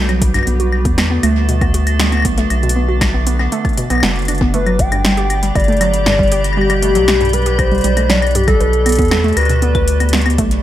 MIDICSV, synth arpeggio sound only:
0, 0, Header, 1, 2, 480
1, 0, Start_track
1, 0, Tempo, 508475
1, 444, Time_signature, 4, 2, 24, 8
1, 10031, End_track
2, 0, Start_track
2, 0, Title_t, "Synth arpeggio sound"
2, 0, Program_c, 0, 84
2, 84, Note_on_c, 0, 54, 105
2, 198, Note_off_c, 0, 54, 0
2, 324, Note_on_c, 0, 43, 101
2, 376, Note_off_c, 0, 43, 0
2, 444, Note_on_c, 0, 59, 79
2, 496, Note_off_c, 0, 59, 0
2, 564, Note_on_c, 0, 66, 78
2, 650, Note_off_c, 0, 66, 0
2, 804, Note_on_c, 0, 59, 73
2, 856, Note_off_c, 0, 59, 0
2, 924, Note_on_c, 0, 59, 84
2, 976, Note_off_c, 0, 59, 0
2, 1044, Note_on_c, 0, 59, 74
2, 1130, Note_off_c, 0, 59, 0
2, 1164, Note_on_c, 0, 57, 102
2, 1278, Note_off_c, 0, 57, 0
2, 1404, Note_on_c, 0, 47, 98
2, 1456, Note_off_c, 0, 47, 0
2, 1524, Note_on_c, 0, 59, 75
2, 1576, Note_off_c, 0, 59, 0
2, 1644, Note_on_c, 0, 66, 74
2, 1730, Note_off_c, 0, 66, 0
2, 1884, Note_on_c, 0, 59, 83
2, 1936, Note_off_c, 0, 59, 0
2, 2004, Note_on_c, 0, 59, 74
2, 2056, Note_off_c, 0, 59, 0
2, 2124, Note_on_c, 0, 59, 73
2, 2210, Note_off_c, 0, 59, 0
2, 2244, Note_on_c, 0, 57, 98
2, 2358, Note_off_c, 0, 57, 0
2, 2484, Note_on_c, 0, 47, 96
2, 2535, Note_off_c, 0, 47, 0
2, 2604, Note_on_c, 0, 59, 74
2, 2656, Note_off_c, 0, 59, 0
2, 2724, Note_on_c, 0, 66, 70
2, 2810, Note_off_c, 0, 66, 0
2, 2963, Note_on_c, 0, 59, 74
2, 3015, Note_off_c, 0, 59, 0
2, 3084, Note_on_c, 0, 59, 78
2, 3136, Note_off_c, 0, 59, 0
2, 3204, Note_on_c, 0, 59, 76
2, 3290, Note_off_c, 0, 59, 0
2, 3324, Note_on_c, 0, 57, 99
2, 3438, Note_off_c, 0, 57, 0
2, 3564, Note_on_c, 0, 47, 76
2, 3650, Note_off_c, 0, 47, 0
2, 3684, Note_on_c, 0, 59, 75
2, 3770, Note_off_c, 0, 59, 0
2, 3804, Note_on_c, 0, 59, 85
2, 3890, Note_off_c, 0, 59, 0
2, 4044, Note_on_c, 0, 62, 75
2, 4096, Note_off_c, 0, 62, 0
2, 4164, Note_on_c, 0, 59, 76
2, 4216, Note_off_c, 0, 59, 0
2, 4284, Note_on_c, 0, 57, 82
2, 4370, Note_off_c, 0, 57, 0
2, 4404, Note_on_c, 0, 54, 98
2, 4518, Note_off_c, 0, 54, 0
2, 4644, Note_on_c, 0, 43, 92
2, 4696, Note_off_c, 0, 43, 0
2, 4764, Note_on_c, 0, 55, 82
2, 4815, Note_off_c, 0, 55, 0
2, 4884, Note_on_c, 0, 67, 73
2, 4936, Note_off_c, 0, 67, 0
2, 5124, Note_on_c, 0, 55, 76
2, 5176, Note_off_c, 0, 55, 0
2, 5244, Note_on_c, 0, 55, 81
2, 5296, Note_off_c, 0, 55, 0
2, 5364, Note_on_c, 0, 57, 75
2, 5450, Note_off_c, 0, 57, 0
2, 5484, Note_on_c, 0, 54, 96
2, 5598, Note_off_c, 0, 54, 0
2, 5724, Note_on_c, 0, 43, 104
2, 5775, Note_off_c, 0, 43, 0
2, 5844, Note_on_c, 0, 55, 74
2, 5896, Note_off_c, 0, 55, 0
2, 5964, Note_on_c, 0, 67, 79
2, 6016, Note_off_c, 0, 67, 0
2, 6204, Note_on_c, 0, 55, 81
2, 6255, Note_off_c, 0, 55, 0
2, 6324, Note_on_c, 0, 55, 77
2, 6375, Note_off_c, 0, 55, 0
2, 6443, Note_on_c, 0, 57, 79
2, 6530, Note_off_c, 0, 57, 0
2, 6564, Note_on_c, 0, 54, 94
2, 6677, Note_off_c, 0, 54, 0
2, 6803, Note_on_c, 0, 43, 106
2, 6855, Note_off_c, 0, 43, 0
2, 6924, Note_on_c, 0, 55, 78
2, 6975, Note_off_c, 0, 55, 0
2, 7044, Note_on_c, 0, 67, 78
2, 7096, Note_off_c, 0, 67, 0
2, 7284, Note_on_c, 0, 55, 71
2, 7335, Note_off_c, 0, 55, 0
2, 7404, Note_on_c, 0, 55, 76
2, 7456, Note_off_c, 0, 55, 0
2, 7524, Note_on_c, 0, 57, 76
2, 7610, Note_off_c, 0, 57, 0
2, 7644, Note_on_c, 0, 54, 107
2, 7758, Note_off_c, 0, 54, 0
2, 7884, Note_on_c, 0, 43, 100
2, 7935, Note_off_c, 0, 43, 0
2, 8003, Note_on_c, 0, 55, 72
2, 8055, Note_off_c, 0, 55, 0
2, 8123, Note_on_c, 0, 71, 84
2, 8175, Note_off_c, 0, 71, 0
2, 8363, Note_on_c, 0, 59, 77
2, 8415, Note_off_c, 0, 59, 0
2, 8483, Note_on_c, 0, 59, 76
2, 8535, Note_off_c, 0, 59, 0
2, 8604, Note_on_c, 0, 59, 80
2, 8690, Note_off_c, 0, 59, 0
2, 8724, Note_on_c, 0, 57, 101
2, 8838, Note_off_c, 0, 57, 0
2, 8964, Note_on_c, 0, 47, 99
2, 9016, Note_off_c, 0, 47, 0
2, 9083, Note_on_c, 0, 59, 81
2, 9135, Note_off_c, 0, 59, 0
2, 9204, Note_on_c, 0, 71, 73
2, 9255, Note_off_c, 0, 71, 0
2, 9444, Note_on_c, 0, 59, 77
2, 9495, Note_off_c, 0, 59, 0
2, 9564, Note_on_c, 0, 59, 84
2, 9615, Note_off_c, 0, 59, 0
2, 9684, Note_on_c, 0, 59, 76
2, 9770, Note_off_c, 0, 59, 0
2, 9804, Note_on_c, 0, 57, 103
2, 9918, Note_off_c, 0, 57, 0
2, 10031, End_track
0, 0, End_of_file